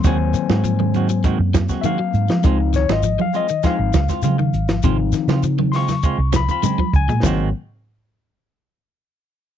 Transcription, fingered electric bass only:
\new Staff \with { instrumentName = "Fingered electric bass" } { \clef bass \time 4/4 \key aes \mixolydian \tempo 4 = 100 ees,8 r16 aes,4. ges,8 r8. aes,16 f16 | des,8. aes,,8 r4 aes,,16 des,16 r16 des8 aes,,8 | aes,,8 r16 des4. c,8 r8. des,16 bes,16 | aes,,8 r2. r8 | }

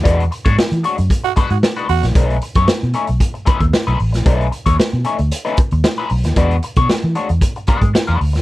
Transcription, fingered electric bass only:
\new Staff \with { instrumentName = "Fingered electric bass" } { \clef bass \time 4/4 \key b \mixolydian \tempo 4 = 114 e,8 r16 gis,16 r16 e16 r16 fis,16 r8. gis,16 r8 e,16 ais,,16 | b,,8 r16 fis,16 r16 b,16 r16 b,,16 r8. dis,16 r16 b,,16 a,,16 ais,,16 | b,,8 r16 dis,16 r16 b,16 r16 d,16 r8. dis,16 r8 b,,16 dis,16 | e,8 r16 b,16 r16 e16 r16 e,16 r8. gis,16 r16 e,16 d,16 dis,16 | }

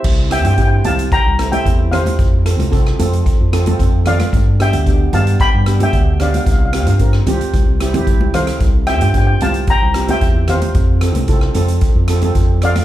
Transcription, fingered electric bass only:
\new Staff \with { instrumentName = "Fingered electric bass" } { \clef bass \time 4/4 \key c \mixolydian \tempo 4 = 112 c,8. g,8. c,8 r16 c,8. e,4 | f,8. c,8. f,8 r16 f,8. f,4 | g,8. d,8. g,8 r16 g,8. d,4 | c,8. g,8. c,16 r16 c,16 c,8. c,4 |
c,8. g,8. c,8 r16 c,8. e,4 | f,8. c,8. f,8 r16 f,8. f,4 | }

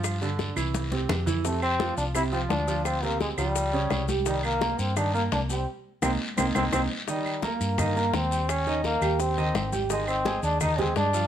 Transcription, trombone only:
\new Staff \with { instrumentName = "Trombone" } { \time 4/4 \key c \minor \tempo 4 = 170 r1 | a8 c'4 d'8 e'8 c'8 d'4 | c'8 bes8 aes8 g2 r8 | g8 bes4 c'8 d'8 bes8 d'8 c'8 |
r4 c'8 r8 c'8 c'8 c'8 r8 | g4 bes2 c'4 | des'4 bes4 c'4. r8 | aes8 c'4 d'8 ees'8 c'8 d'4 | }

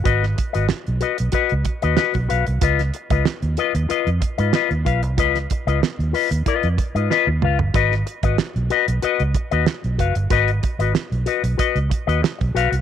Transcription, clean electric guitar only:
\new Staff \with { instrumentName = "Clean electric guitar" } { \time 4/4 \key gis \dorian \tempo 4 = 94 <fis' b' dis''>16 r8 <fis' b' dis''>16 r8 <fis' b' dis''>16 r16 <fis' b' dis''>16 r8 <fis' b' dis''>16 <fis' b' dis''>16 r16 <fis' b' eis''>16 r16 | <eis' b' dis''>16 r8 <eis' b' dis''>16 r8 <eis' b' dis''>16 r16 <eis' b' dis''>16 r8 <eis' b' dis''>16 <eis' b' dis''>16 r16 <eis' b' eis''>16 r16 | <eis' b' dis''>16 r8 <eis' b' dis''>16 r8 <eis' b' dis''>16 r16 <eis' b' dis''>16 r8 <eis' b' dis''>16 <eis' b' dis''>16 r16 <eis' b' eis''>16 r16 | <fis' b' dis''>16 r8 <fis' b' dis''>16 r8 <fis' b' dis''>16 r16 <fis' b' dis''>16 r8 <fis' b' dis''>16 r8 <fis' b' eis''>16 r16 |
<fis' b' dis''>16 r8 <fis' b' dis''>16 r8 <fis' b' dis''>16 r16 <fis' b' dis''>16 r8 <fis' b' dis''>16 r8 <fis' b' eis''>16 r16 | }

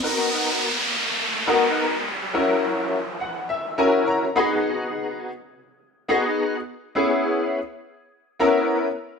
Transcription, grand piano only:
\new Staff \with { instrumentName = "Grand piano" } { \time 4/4 \key b \major \tempo 4 = 104 << { r1 | r4. fis''8 e''8 gis''8 ais''8 b''8 | r1 | r1 | } \\ { <b dis' fis' ais'>4 r4. <b dis' fis' ais'>4 r8 | <cis' e' fis' ais'>4 r4. <cis' e' fis' ais'>4 <b dis' fis' gis'>8~ | <b dis' fis' gis'>4 r4. <b dis' fis' gis'>4 r8 | <b cis' e' gis'>4 r4. <b cis' e' ais'>4 r8 | } >> }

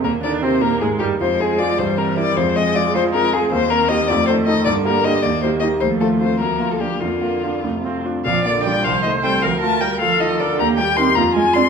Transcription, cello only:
\new Staff \with { instrumentName = "Cello" } { \clef bass \time 6/8 \key f \dorian \tempo 4. = 104 bes,8 d8 c8 bes,8 aes,8 g,8 | aes4. e4. | f4. aes4. | \key bes \major ees2. |
d4. ees4. | f4. f4. | d4. c4 r8 | f8 d8 g8 f8 ees8 g8 |
f8 a8 g8 f8 ees8 d8 | bes8 g8 c'8 bes8 aes8 c'8 | }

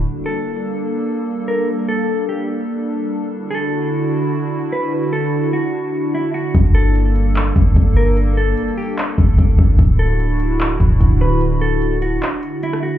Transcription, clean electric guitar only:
\new Staff \with { instrumentName = "Clean electric guitar" } { \time 4/4 \key g \lydian \tempo 4 = 148 r8 a'4. r4. bes'8 | r8 a'4 g'8 r2 | r8 a'4. r4. b'8 | r8 a'4 fis'4. e'8 fis'8 |
r8 a'4. r4. bes'8 | r8 a'4 g'8 r2 | r8 a'4. r4. b'8 | r8 a'4 fis'4. e'8 fis'8 | }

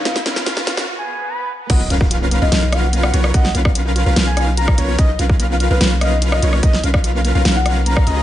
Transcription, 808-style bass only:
\new Staff \with { instrumentName = "808-style bass" } { \clef bass \time 4/4 \key b \lydian \tempo 4 = 146 b,,8 b,,4~ b,,16 b,,16 r2 | b,,8 b,,4~ b,,16 b,,16 b,,4. b,,8 | b,,8 b,,4~ b,,16 b,,16 b,,4. b,,8 | b,,8 b,,4~ b,,16 b,,16 b,,4. b,,8 |
b,,8 b,,4~ b,,16 b,,16 b,,4. cis,8 | }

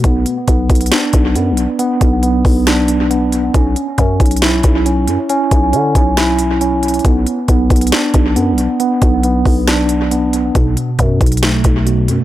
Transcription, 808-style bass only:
\new Staff \with { instrumentName = "808-style bass" } { \clef bass \time 4/4 \key b \minor \tempo 4 = 137 b,,8 r8 b,,8 b,,8 r8 b,,8 fis,16. b,,16. r16 | r8 b,,4 b,,2~ b,,8 | b,,8 r8 fis,8 b,,4 b,,4 fis,16 r16 | r8 b,,8 d8 b,,2~ b,,8 |
b,,8 r8 b,,8 b,,8 r8 b,,8 fis,16. b,,16. r16 | r8 b,,4 b,,2~ b,,8 | b,,8 r8 fis,8 b,,4 b,,4 fis,16 r16 | }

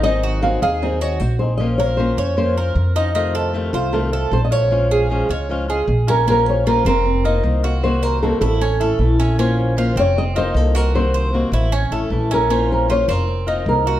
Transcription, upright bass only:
\new Staff \with { instrumentName = "Upright bass" } { \clef bass \time 4/4 \key bes \minor \tempo 4 = 154 aes,,4. ees,4. bes,,4~ | bes,,4. f,4. f,4~ | f,4. c,4. bes,,4~ | bes,,4. des,4. bes,,4~ |
bes,,4. f,,4. c,4~ | c,4. a,,4. bes,,4~ | bes,,4. f,,4. c,4~ | c,4. a,,4 a,,8 bes,,4~ |
bes,,4. f,,4. c,4 | }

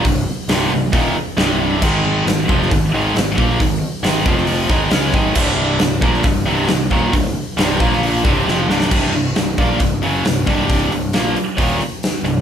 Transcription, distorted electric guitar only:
\new Staff \with { instrumentName = "Distorted electric guitar" } { \clef bass \time 4/4 \key c \phrygian \tempo 4 = 135 <c, g,>8 r8 <c, g, c>8 <c, g,>8 <ees, bes, ees>8 r8 <c, g, c>4 | <aes, ees aes>4 <aes, ees>8 <f, c f>8 <aes, ees>8 <aes, ees aes>8 <aes, ees>8 <bes, f bes>8 | <aes, ees>8 r8 <aes, ees aes>8 <f, c f>4 <aes, ees aes>8 <des aes des'>8 <aes, ees aes>8 | <c, g, c>4 <c, g,>8 <bes, f bes>8 <c, g,>8 <c, g, c>8 <c, g,>8 <ees, bes, ees>8 |
<c, g,>8 r8 <c, g, c>8 <bes, f bes>4 <c, g, c>8 <f, c f>8 <c, g, c>8 | <c, g, c>8 <c, g,>8 <c, g,>8 <bes, f bes>8 <c, g,>8 <fis, des fis>8 <c, g,>8 <c, g, c>8~ | <c, g, c>8 <c, g,>8 <bes, f bes>8 r8 <ees, bes, ees>8 r4 <c, g,>8 | }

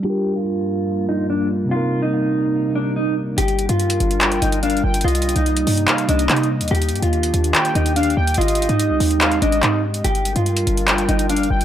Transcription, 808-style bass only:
\new Staff \with { instrumentName = "808-style bass" } { \clef bass \time 4/4 \key g \phrygian \tempo 4 = 144 r1 | r1 | g,,8. g,8. g,,4 g,,4 g,,8 | c,8. c,8. g,8 r8 c,8 c8. ees,16 |
ees,8 g,16 ees,8. ees,8 r8 ees,4 ees,8 | aes,,8. aes,8 c,16 ees,4 aes,,8 aes,4 | g,,8. g,8. g,,4 g,,4 g,,8 | }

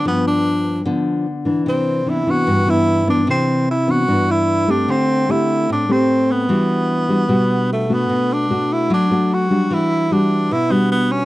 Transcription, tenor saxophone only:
\new Staff \with { instrumentName = "Tenor saxophone" } { \time 4/4 \key e \minor \tempo 4 = 149 b8 d'4. r2 | c'4 e'8 fis'4 e'4 d'8 | c'4 e'8 fis'4 e'4 d'8 | c'4 e'4 d'8 c'4 b8~ |
b2. a8 b8~ | b8 d'4 e'8 d'4 fis'4 | e'4 d'4 e'8 b8 b8 cis'8 | }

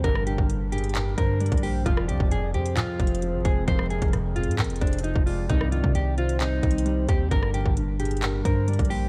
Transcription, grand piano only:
\new Staff \with { instrumentName = "Grand piano" } { \clef bass \time 4/4 \key f \dorian \tempo 4 = 132 g,8 d8 g,8 g,8 g,8 d8 g8 bes8 | f,8 c8 f,8 f,8 f,8 c8 f8 aes8 | f,8 c8 f,8 f,8 f,8 c8 f8 aes8 | c8 ees8 c8 c8 c8 ees8 g8 c'8 |
g,8 d8 g,8 g,8 g,8 d8 g8 bes8 | }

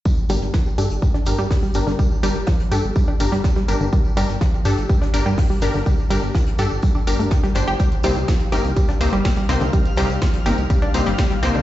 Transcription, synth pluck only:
\new Staff \with { instrumentName = "Synth pluck" } { \clef bass \time 4/4 \key g \minor \tempo 4 = 124 g16 r16 g16 r16 f16 r16 g'16 r16 g16 d'16 r16 g16 r16 g16 r16 d16 | g16 r16 g16 r16 f16 r16 g'16 r16 g16 d'16 r16 g16 r16 g16 r16 d16 | g16 r16 g16 r16 f16 r16 g'16 r16 g16 d'16 r16 g16 r16 g16 r16 d16 | g16 r16 g16 r16 f16 r16 g'16 r16 g16 d'16 r16 a16 r16 g16 r16 g'16 |
g16 r16 g16 r16 f16 r16 g'16 r16 g16 d'16 r16 g16 g16 g16 r16 d16 | g16 r16 g16 r16 f16 r16 g'16 r16 g16 d'16 r16 g16 g16 g16 r16 d16 | }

